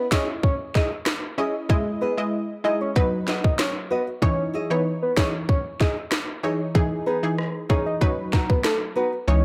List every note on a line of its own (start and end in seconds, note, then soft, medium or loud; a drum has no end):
0.11 0.29 C#4 medium
0.11 0.26 E4 medium
0.11 0.29 E4 medium
0.11 0.27 G#4 medium
0.11 0.23 C#5 medium
0.11 0.29 D#5 medium
0.11 0.27 D#5 loud
0.11 kick medium
0.11 snare loud
0.43 0.54 C#5 medium
0.43 kick medium
0.75 0.90 E4 medium
0.75 0.90 G#4 medium
0.75 0.86 D#5 medium
0.75 0.90 D#5 medium
0.75 kick medium
0.75 snare medium
0.91 muted nylon-string guitar stroke soft
1.06 cross-stick medium
1.06 snare loud
1.38 1.55 C#4 medium
1.38 1.53 E4 medium
1.38 1.55 E4 medium
1.38 1.53 G#4 medium
1.38 1.55 D#5 medium
1.38 1.53 D#5 medium
1.69 2.14 G#3 medium
1.69 2.14 E4 medium
1.69 2.14 D#5 loud
1.69 kick loud
2.01 2.16 E4 medium
2.01 2.16 G#4 medium
2.01 2.12 B4 medium
2.01 2.17 D#5 medium
2.17 2.33 G#3 medium
2.17 2.33 E4 medium
2.17 2.33 D#5 medium
2.64 2.81 G#3 medium
2.64 2.81 E4 medium
2.64 2.79 E4 medium
2.64 2.79 G#4 medium
2.64 2.75 D#5 medium
2.64 2.82 D#5 medium
2.64 2.80 D#5 medium
2.81 2.91 C#5 medium
2.81 muted nylon-string guitar stroke medium
2.96 4.13 F#3 loud
2.96 4.13 D#4 medium
2.96 3.07 B4 medium
2.96 4.13 B4 loud
2.96 kick medium
3.27 3.42 F#4 medium
3.27 3.43 B4 medium
3.27 3.43 D#5 medium
3.27 snare medium
3.44 3.54 D#5 medium
3.44 kick medium
3.59 3.70 C#5 medium
3.59 cross-stick medium
3.59 snare loud
3.90 4.05 F#4 medium
3.90 4.01 B4 medium
3.90 4.06 B4 medium
3.90 4.06 D#5 medium
4.07 muted nylon-string guitar stroke soft
4.22 4.66 E3 loud
4.22 4.67 D#4 medium
4.22 4.67 C#5 loud
4.22 4.43 C#5 loud
4.22 kick loud
4.54 4.69 E4 medium
4.54 4.69 G#4 medium
4.54 4.69 D#5 medium
4.70 4.86 E3 medium
4.70 4.86 D#4 medium
4.70 4.80 B4 medium
4.70 4.86 C#5 medium
5.02 5.12 B4 medium
5.17 5.34 E3 medium
5.17 5.34 D#4 medium
5.17 5.32 E4 medium
5.17 5.32 G#4 medium
5.17 5.28 C#5 medium
5.17 5.34 C#5 medium
5.17 5.32 D#5 medium
5.17 kick medium
5.17 snare loud
5.49 5.59 C#5 medium
5.49 kick medium
5.80 5.95 E4 medium
5.80 5.95 G#4 medium
5.80 5.91 D#5 medium
5.80 5.95 D#5 medium
5.80 kick medium
5.80 snare medium
5.97 muted nylon-string guitar stroke soft
6.12 cross-stick medium
6.12 snare loud
6.43 6.60 E3 medium
6.43 6.61 D#4 medium
6.43 6.58 E4 medium
6.43 6.58 G#4 medium
6.43 6.61 C#5 medium
6.43 6.59 D#5 medium
6.75 7.19 E3 medium
6.75 7.19 D#4 medium
6.75 7.19 G#4 loud
6.75 kick loud
7.06 7.21 D#4 medium
7.06 7.22 G#4 medium
7.06 7.17 B4 medium
7.06 7.22 B4 medium
7.23 7.38 E3 medium
7.23 7.39 D#4 medium
7.23 7.39 G#4 medium
7.38 cross-stick medium
7.69 7.87 E3 medium
7.69 7.84 D#4 medium
7.69 7.87 D#4 medium
7.69 7.85 G#4 medium
7.69 7.87 G#4 medium
7.69 7.85 B4 medium
7.69 7.80 C#5 medium
7.69 kick medium
7.86 7.96 D#5 medium
7.86 muted nylon-string guitar stroke soft
8.01 9.18 F#3 medium
8.01 9.18 D#4 medium
8.01 9.18 B4 loud
8.01 8.12 C#5 medium
8.01 kick medium
8.33 8.48 D#4 medium
8.33 8.48 F#4 medium
8.33 8.48 B4 medium
8.33 kick medium
8.33 snare medium
8.50 8.59 B4 medium
8.50 kick medium
8.64 8.75 A4 medium
8.64 cross-stick medium
8.64 snare loud
8.96 9.11 D#4 medium
8.96 9.11 F#4 medium
8.96 9.07 B4 medium
8.96 9.11 B4 medium
9.12 muted nylon-string guitar stroke soft
9.28 9.45 C#2 loud
9.28 9.45 E3 medium
9.28 9.45 D#4 medium
9.28 9.45 C#5 loud